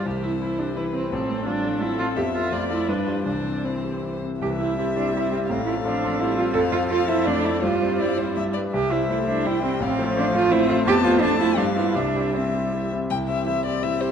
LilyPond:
<<
  \new Staff \with { instrumentName = "Violin" } { \time 3/4 \key c \major \tempo 4 = 167 c''2 b'4 | a'2 a'4 | e''4 d''4 b'4 | c''2~ c''8 r8 |
e''2. | f''2. | f''4 f''8 e''8 d''4 | c''4 d''8 c''8 e''8 d''8 |
e''2 g''4 | f''2 e''4 | a''4 a''4 f''4 | e''4 e''4. r8 |
g''8 e''8 e''8 d''8 e''8 c''8 | }
  \new Staff \with { instrumentName = "Grand piano" } { \time 3/4 \key c \major c,8 c'8 e'8 g'8 e'8 c'8 | a,,8 c'8 f'8 a'8 f'8 c'8 | f,8 <f' a'>8 f,8 <f' a'>8 g,8 <f' g'>8 | c,8 c'8 e'8 g'8 e'8 c'8 |
c,8 <c' e' g'>8 <c' e' g'>8 <c' e' g'>8 <c' e' g'>8 <c' e' g'>8 | a,,8 <c' f' a'>8 <c' f' a'>8 <c' f' a'>8 <c' f' a'>8 <c' f' a'>8 | f,8 <c' f' a'>8 <c' f' a'>8 <c' f' a'>8 f,8 <a d' a'>8 | g,8 <g c' c''>8 <g c' c''>8 <g c' c''>8 g,8 <g d' b'>8 |
c,8 <g e' c''>8 <g e' c''>8 <g e' c''>8 <g e' c''>8 <g e' c''>8 | a,,8 <a f' c''>8 <a f' c''>8 <a f' c''>8 <a f' c''>8 <a f' c''>8 | f,8 <a f' c''>8 f,8 <a f' a'>8 g,8 <b f' g'>8 | c,8 <c' e' g'>8 <c' e' g'>8 <c' e' g'>8 <c' e' g'>8 <c' e' g'>8 |
c,8 <c' e' g'>8 <c' e' g'>8 <c' e' g'>8 <c' e' g'>8 <c' e' g'>8 | }
  \new Staff \with { instrumentName = "Cello" } { \time 3/4 \key c \major e2 e4 | f8 a8 g8 f8 c'4 | b4 a4 g8 f8 | e2~ e8 r8 |
g'8 e'8 e'8 d'8 e'8 c'8 | c'8 e'8 d'4 e'8 f'8 | a'8 f'8 f'8 e'8 d'8 e'8 | f'4 e'4. r8 |
g'8 e'8 e'8 d'8 e'8 c'8 | c'4 d'8 f'8 e'8 f'8 | g'8 f'8 d'8 e'8 d'8 e'8 | d'4 c'4 r4 |
r4 e4 e4 | }
  \new Staff \with { instrumentName = "Viola" } { \time 3/4 \key c \major g'8 e'8 e'8 d'8 e'8 c'8 | c'4 d'4 e'8 f'8 | g'8 f'4 e'8 d'4 | d'4 c'4 r4 |
e4 g2 | a4 f4 g4 | f2 a4 | g2~ g8 r8 |
r4 a4 g4 | f2 c'4 | b4 a4 g4 | g2~ g8 r8 |
e'4 g'2 | }
>>